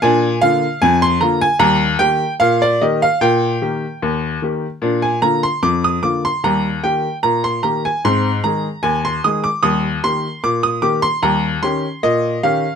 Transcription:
X:1
M:2/4
L:1/16
Q:1/4=75
K:Eb
V:1 name="Upright piano"
a2 f2 a c' b a | b2 g2 f d e f | g8- | g a b c' d' e' d' c' |
b2 g2 b c' b a | c'2 b2 a c' e' d' | e'2 c'2 d' e' d' c' | b2 c'2 e2 f2 |]
V:2 name="Upright piano" clef=bass
[B,,D]2 [D,B,F]2 F,,2 [D,B,F]2 | [E,,G,]2 [E,B,G]2 B,,2 [E,B,G]2 | B,,2 [E,B,G]2 E,,2 [E,B,G]2 | [B,,D]2 [D,B,F]2 F,,2 [D,B,F]2 |
[E,,G,]2 [E,B,G]2 B,,2 [E,B,G]2 | [A,,C]2 [E,A,A]2 E,,2 [E,A,A]2 | [E,,G,]2 [E,B,G]2 B,,2 [E,B,G]2 | [E,,G,]2 [E,_DG]2 B,,2 [E,DG]2 |]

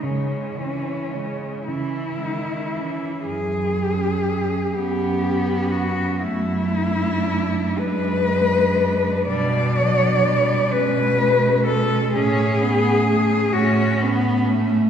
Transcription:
X:1
M:6/8
L:1/8
Q:3/8=41
K:C#m
V:1 name="Cello"
C3 E3 | [K:F#m] G3 =G2 F | E3 B3 | d3 B2 A |
G3 F z2 |]
V:2 name="Cello"
G, C G, C G, C | [K:F#m] z C2 C C2 | z D3 D2 | D D2 C C2 |
C C3 C2 |]
V:3 name="Cello" clef=bass
C, E, C, E, D, E, | [K:F#m] z3 B,3 | A,3 G,3 | =G, F, G, ^G,3 |
C B, A, C B, A, |]
V:4 name="Cello" clef=bass
C,3 C,3 | [K:F#m] F,,3 F,,3 | F,,3 F,,3 | B,,3 B,,3 |
A,,3 A,,3 |]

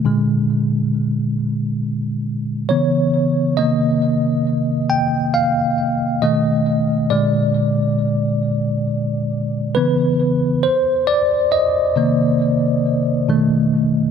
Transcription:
X:1
M:4/4
L:1/8
Q:"Swing 16ths" 1/4=68
K:Cm
V:1 name="Tine electric piano"
z6 _d2 | e3 g f2 ^d2 | d4 z2 _c2 | c d e6 |]
V:2 name="Tine electric piano" clef=bass
[B,,D,A,]6 [_D,_F,_C]2 | [C,E,B,]6 [=B,,^D,=A,] z | [B,,D,A,]3 z3 [_D,_F,_C] z | z3 [C,E,B,]3 [=B,,^D,=A,]2 |]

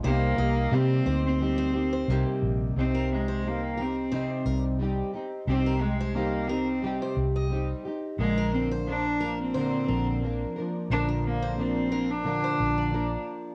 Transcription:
X:1
M:4/4
L:1/16
Q:"Swing 16ths" 1/4=88
K:Cm
V:1 name="Steel-string acoustic guitar"
c2 e2 z2 c2 z c z c2 z3 | z B z c2 z B z c2 B z4 z | z B z c2 z B z2 c z e2 z3 | z B z c2 z B z c2 B z4 z |
z B z c2 z B z2 c z d2 z3 |]
V:2 name="Cello"
B,4 C3 C6- C z2 | C2 A,2 B,2 C4 z6 | C2 A,2 B,2 C4 z6 | A,2 C2 D3 C6- C z2 |
D2 B,2 C3 D6- D z2 |]
V:3 name="Nylon-string guitar"
[C,G,B,EG]2 [B,EG]2 [C,G,B,EG]2 [B,EG]2 [G,B,EG]2 [B,EG]2 [C,G,B,EG]4 | [C,CEG]4 [G,CEG]2 [CEG]2 [C,G,CEG]4 [G,CEG]2 [CEG]2 | [C,CEG]4 [G,CEG]2 [CEG]2 [C,G,CEG]4 [G,CEG]2 [CEG]2 | [B,,D,F,B,DB]4 [F,B,DB]2 [F,B,DB]2 [B,,D,F,B,DB]4 [F,B,DB]2 [F,B,DB]2 |
[B,,D,F,B,DB]4 [F,B,DB]2 [F,B,DB]2 [B,,D,F,B,DB]4 [F,B,DB]4 |]
V:4 name="Fingered electric bass" clef=bass
C,,2 C,,2 C,2 D,,6 C,, z B,,,2 | C,,8- C,, z C,,4 z2 | C,,8- C,, z C,,4 z2 | B,,,8- B,,, z B,,,4 z2 |
B,,,8- B,,, z B,,,4 z2 |]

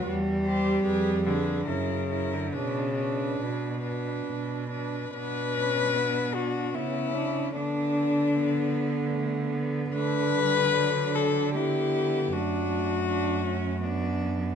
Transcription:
X:1
M:3/4
L:1/16
Q:1/4=75
K:Bm
V:1 name="Cello"
z2 =c2 _c2 c2 ^A2 A2 | B2 B4 B4 B2 | B6 F2 E4 | D8- D2 z2 |
B6 A2 G4 | F8- F2 z2 |]
V:2 name="Cello"
z2 G2 _A2 A2 E2 E2 | D2 D4 D4 D2 | D4 B,4 B,2 D2 | D4 B,8 |
D4 D4 E4 | D4 D2 C2 B,4 |]
V:3 name="Cello"
G,6 D,2 C,3 D, | C,4 B,,6 z2 | B,2 C2 D2 D2 C4 | B,4 B,4 A,2 B,2 |
A,2 G,2 F,4 B,4 | A,2 A,6 D4 |]
V:4 name="Cello" clef=bass
E,,4 =F,,4 ^F,,4 | B,,4 B,,4 B,,4 | B,,8 C,4 | D,12 |
D,12 | F,,12 |]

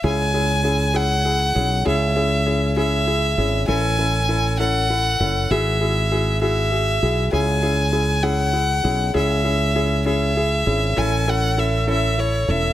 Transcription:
X:1
M:6/8
L:1/8
Q:3/8=66
K:C#phr
V:1 name="Violin"
g3 f3 | e3 e3 | g3 f3 | e3 e3 |
g3 f3 | e3 e3 | g f e e c e |]
V:2 name="Upright piano"
[CEG] [CEG] [CEG] [CEG] [EG] [CEG] | [CEG] [CEG] [CEG] [CEG] [EG] [CEG] | [CEA] [CEA] [CEA] [CEA] [EA] [CEA] | [EFG] [EFG] [EFG] [EFG] [FG] [EFG] |
[CEG] [CEG] [CEG] [CEG] [EG] [CEG] | [CEG] [CEG] [CEG] [CEG] [EG] [CEG] | [CEA] [CEA] [CEA] [CEA] [EA] [CEA] |]
V:3 name="Fretless electric bass" clef=bass
C,,4- C,, B,,, | C,,4- C,, G,,, | A,,,4- A,,, F,,, | G,,,4- G,,, B,,, |
C,,4- C,, B,,, | C,,4- C,, G,,, | A,,,4- A,,, E,,, |]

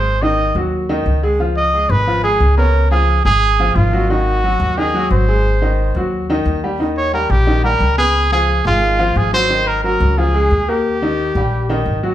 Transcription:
X:1
M:4/4
L:1/8
Q:1/4=178
K:Abmix
V:1 name="Trumpet"
c e2 z4 z | z e2 _c2 A2 B- | B A2 A3 F2 | G4 A2 c2- |
c4 z4 | z d B =G2 B2 A- | A A2 F3 A c- | c B B2 A3 =G- |
=G6 z2 |]
V:2 name="Upright piano"
[A,A] [E,E]2 [G,G]2 [E,E]2 [A,A] | [F,F]2 [A,A]2 [F,F] [A,A]2 [_Cd]- | [_Cd] [F,F]2 [A,A]2 [F,F]2 [G,G] | [E,E]2 [G,G]2 [E,E] [G,G]2 [A,A]- |
[A,A] [E,E]2 [G,G]2 [E,E]2 [=G,=G] | [E,E]2 [=G,=G]2 [E,E] [G,G]2 [_C_c]- | [_C_c] [F,F]2 [A,A]2 [F,F]2 [G,G] | [E,E]2 [G,G]2 [F,F] [A,A]2 [B,B]- |
[B,B] [E,E]2 [=G,=G]2 [E,E]2 [_G,_G] |]
V:3 name="Upright bass" clef=bass
A,,,3 E,,3 D,,2- | D,,3 A,,,3 D,,2- | D,,3 A,,,3 A,,,2- | A,,,3 E,,3 A,,,2- |
A,,,3 E,,3 E,,2- | E,,3 B,,,3 D,,2- | D,,3 A,,,3 A,,,2- | A,,,3 D,,3 E,,2- |
E,,3 B,,,3 A,,,2 |]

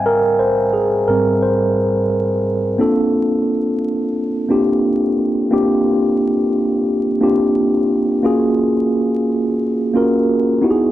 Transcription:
X:1
M:4/4
L:1/16
Q:"Swing 16ths" 1/4=88
K:Bbdor
V:1 name="Tine electric piano"
B2 c2 A2 B2 c6 z2 | [B,C=DF=A]6 z4 [B,CDFG]4- [B,CDFG] z | [B,C=DFG]6 z4 [B,CDFG]4- [B,CDFG] z | [B,DF_GA]6 z4 [B,DFGB]4 [=B,^D=E^F=G^G]2 |]
V:2 name="Tine electric piano" clef=bass
z6 [A,,G,C]6 z4 | z16 | z16 | z16 |]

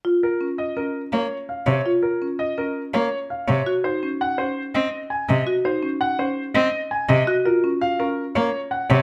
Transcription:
X:1
M:5/4
L:1/8
Q:1/4=166
K:Bbm
V:1 name="Grand piano"
z B z e B z d z f d | z B z e B z d z f d | z c z g c z e z a e | z c z g c z e z a e |
z B z f B z d z g d |]
V:2 name="Marimba"
F z D z D z4 z | F z D z D z4 z | G E D z D z4 z | G E D z D z4 z |
G F D z D z4 z |]
V:3 name="Cello" clef=bass
z6 B, z2 C, | z6 B, z2 C, | z6 C z2 C, | z6 C z2 C, |
z6 B, z2 C, |]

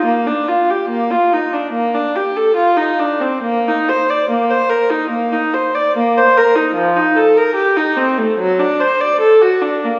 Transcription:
X:1
M:4/4
L:1/16
Q:1/4=73
K:Bb
V:1 name="Viola"
B, D F G B, F E D B, D G A F E D C | B, E c d B, c B E B, E c d B, c B E | F, E A B G E C A, ^F, D c d A ^F D B, |]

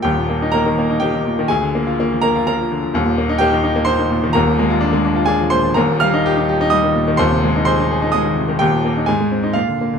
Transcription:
X:1
M:3/4
L:1/16
Q:1/4=127
K:Eb
V:1 name="Grand piano"
[Gg]4 [Bb]4 [Gg]4 | [Aa]6 [Bb]2 [Bb]4 | z4 [Gg]4 [cc']4 | [Bb]8 [Aa]2 [cc']2 |
[Bb]2 [ff']6 [ee']4 | [cc']4 [cc']4 [ee']4 | [Gg]4 [Aa]4 [Ff]4 |]
V:2 name="Grand piano" clef=bass
[E,,,E,,] B,, B, E B, E, B, E B, E, B,, E, | D,, D, B, F B, F, B, F B, F, D, F, | [E,,,E,,] B,, B, E B, E, E B, E E, B,, E, | [E,,,E,,] B,, A, F D A, D F D F, B,, F, |
[E,,,E,,] B,, G, E G E G E G, E, B,, E, | [E,,,E,,] C, A, E A E A E A, E, C, E, | [E,,,E,,] B,, B, E A,, A, C E B,, D, B, D, |]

